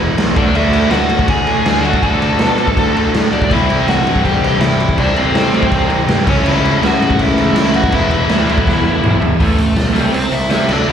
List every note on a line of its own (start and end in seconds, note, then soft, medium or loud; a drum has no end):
0.00 0.15 E2 medium
0.00 0.16 B2 medium
0.00 0.16 E3 medium
0.00 0.34 E3 loud
0.00 0.35 G#3 loud
0.00 0.35 B3 loud
0.00 0.36 E4 loud
0.16 0.33 B1 medium
0.16 0.34 E2 medium
0.16 0.33 B2 medium
0.16 0.35 E3 medium
0.16 snare loud
0.16 crash loud
0.34 0.51 D2 medium
0.34 0.89 D3 loud
0.34 0.91 A3 medium
0.34 0.92 D4 medium
0.34 0.54 D4 medium
0.34 0.54 D5 medium
0.34 kick loud
0.34 crash medium
0.38 1.83 F#4 loud
0.55 0.84 D2 loud
0.55 0.90 E4 medium
0.55 0.91 E5 loud
0.55 crash medium
0.73 crash medium
0.90 1.06 D2 loud
0.90 1.45 D3 medium
0.90 1.46 A3 medium
0.90 1.44 D4 loud
0.90 1.27 F#4 medium
0.90 1.26 F#5 loud
0.90 snare loud
0.90 crash medium
1.09 1.24 A2 medium
1.09 crash medium
1.19 kick medium
1.28 1.43 D2 loud
1.28 1.81 G#4 medium
1.28 1.86 G#5 loud
1.28 kick loud
1.28 crash medium
1.46 1.62 A2 medium
1.46 1.81 D3 medium
1.46 1.82 A3 medium
1.46 1.82 D4 medium
1.46 crash medium
1.65 1.94 D2 medium
1.65 snare loud
1.65 crash loud
1.82 2.37 D3 medium
1.82 2.38 A3 medium
1.82 2.39 D4 loud
1.82 2.01 F#4 medium
1.82 3.31 F#4 loud
1.82 2.01 F#5 medium
1.82 crash medium
1.93 kick loud
2.03 2.32 D2 medium
2.03 3.10 A4 medium
2.03 3.10 A5 loud
2.03 kick medium
2.03 crash medium
2.22 crash medium
2.38 2.68 B2 loud
2.38 2.93 D3 medium
2.38 2.94 A3 medium
2.38 2.92 D4 loud
2.38 snare loud
2.38 crash medium
2.58 crash medium
2.68 kick medium
2.77 3.06 D2 loud
2.77 kick medium
2.77 crash medium
2.94 3.31 D3 medium
2.94 3.31 A3 medium
2.94 3.30 D4 medium
2.94 crash medium
3.14 3.29 A2 medium
3.14 snare loud
3.14 crash medium
3.33 3.53 D2 medium
3.33 3.44 D4 medium
3.33 3.43 D5 medium
3.33 crash medium
3.42 3.53 D5 medium
3.42 kick loud
3.49 3.80 C2 loud
3.49 4.06 C3 medium
3.49 4.96 E3 loud
3.49 4.05 G3 medium
3.49 4.04 C4 loud
3.49 4.99 E4 loud
3.49 3.86 E4 medium
3.49 3.90 E5 loud
3.49 kick medium
3.49 crash medium
3.70 crash medium
3.88 4.02 C2 loud
3.88 4.22 F#4 medium
3.88 4.23 F#5 loud
3.88 snare loud
3.88 crash medium
4.04 4.21 G2 medium
4.04 4.58 C3 medium
4.04 4.60 G3 medium
4.04 4.59 C4 medium
4.04 crash medium
4.16 kick medium
4.25 4.40 C2 loud
4.25 4.59 G4 medium
4.25 4.59 G5 loud
4.25 kick medium
4.25 crash medium
4.43 4.57 G2 medium
4.43 crash medium
4.60 4.90 C2 medium
4.60 4.95 C3 medium
4.60 4.96 G3 medium
4.60 4.97 C4 medium
4.60 4.95 E4 medium
4.60 4.96 E5 medium
4.60 snare loud
4.60 crash loud
4.80 crash medium
4.89 kick medium
4.96 5.27 C2 loud
4.96 5.51 C3 medium
4.96 6.25 E3 medium
4.96 5.51 G3 loud
4.96 5.49 C4 loud
4.96 5.15 D4 medium
4.96 6.28 E4 loud
4.96 5.18 D5 medium
4.96 kick medium
4.96 crash medium
5.16 5.87 C4 medium
5.16 crash medium
5.21 5.88 C5 medium
5.34 5.63 A2 medium
5.34 snare loud
5.34 crash medium
5.50 6.05 C3 medium
5.50 6.06 G3 medium
5.50 6.06 C4 medium
5.50 crash medium
5.63 kick medium
5.72 6.01 C2 medium
5.72 kick medium
5.72 crash medium
5.90 crash medium
6.06 6.23 G2 medium
6.06 6.24 C3 medium
6.06 6.25 G3 medium
6.06 6.26 C4 loud
6.06 snare loud
6.06 crash medium
6.24 6.42 C#2 loud
6.24 6.78 A2 medium
6.24 7.73 C#3 medium
6.24 6.80 E3 medium
6.24 6.80 A3 loud
6.24 7.73 C#4 loud
6.24 6.45 C#4 medium
6.24 7.93 E4 loud
6.24 kick loud
6.24 crash loud
6.30 6.48 C#5 medium
6.45 6.74 C#2 loud
6.45 6.80 E4 medium
6.45 6.85 E5 loud
6.45 crash medium
6.65 crash medium
6.79 6.96 C#2 medium
6.79 7.35 A2 medium
6.79 7.37 E3 medium
6.79 7.35 A3 medium
6.79 crash medium
6.84 7.18 F#4 medium
6.84 7.22 F#5 loud
6.84 snare loud
7.00 7.15 G#2 medium
7.00 crash medium
7.10 kick medium
7.19 7.34 C#2 loud
7.19 7.72 E4 medium
7.19 7.75 E5 loud
7.19 kick medium
7.19 crash medium
7.37 7.52 G#2 medium
7.37 7.74 A2 medium
7.37 7.93 E3 medium
7.37 7.73 A3 medium
7.37 crash medium
7.55 7.95 C#2 medium
7.55 snare loud
7.55 crash loud
7.74 7.92 F#4 medium
7.74 7.94 F#5 medium
7.74 crash medium
7.84 kick loud
7.91 8.22 E1 loud
7.91 8.46 E2 medium
7.91 8.46 B2 loud
7.91 8.45 E3 loud
7.91 9.39 G#3 loud
7.91 9.39 B3 loud
7.91 9.40 E4 loud
7.91 9.18 E4 medium
7.91 9.22 E5 loud
7.91 kick medium
7.91 crash medium
8.11 crash medium
8.29 8.59 D2 medium
8.29 snare loud
8.29 crash medium
8.46 9.00 E2 medium
8.46 9.02 B2 medium
8.46 9.02 E3 medium
8.46 crash medium
8.58 kick medium
8.67 8.96 E1 loud
8.67 kick medium
8.67 snare medium
9.02 9.18 B1 medium
9.02 9.38 E2 medium
9.02 9.38 B2 medium
9.02 9.38 E3 loud
9.02 mid tom loud
9.21 9.36 E1 loud
9.21 floor tom loud
9.38 9.53 A1 medium
9.38 9.54 A2 medium
9.38 9.54 E3 medium
9.38 9.54 A3 loud
9.38 9.58 A3 medium
9.38 9.55 C#4 loud
9.38 9.55 E4 loud
9.38 kick loud
9.38 open hi-hat medium
9.43 9.60 A4 medium
9.58 9.71 A1 medium
9.58 10.11 A3 medium
9.58 10.17 A4 medium
9.58 open hi-hat medium
9.76 9.96 B1 medium
9.76 snare loud
9.76 open hi-hat medium
9.93 10.08 C2 medium
9.93 10.09 C3 medium
9.93 10.09 G3 loud
9.93 10.10 C4 loud
9.93 10.10 E4 loud
9.93 open hi-hat medium
10.12 10.26 C2 medium
10.12 10.30 C4 medium
10.12 10.34 C5 medium
10.12 open hi-hat medium
10.32 10.44 C2 medium
10.32 10.50 E4 medium
10.32 10.50 E5 medium
10.32 open hi-hat medium
10.49 10.65 C3 loud
10.49 10.70 C3 medium
10.49 10.65 G3 medium
10.49 10.66 C4 loud
10.49 10.66 E4 medium
10.49 10.69 E4 medium
10.49 10.71 E5 medium
10.49 snare loud
10.49 open hi-hat medium
10.67 10.81 D2 medium
10.67 10.83 D3 medium
10.67 10.85 F#3 medium
10.67 10.84 A3 loud
10.67 10.84 D4 medium
10.67 10.87 D4 medium
10.67 10.89 D5 medium
10.67 crash loud
10.88 10.92 D2 medium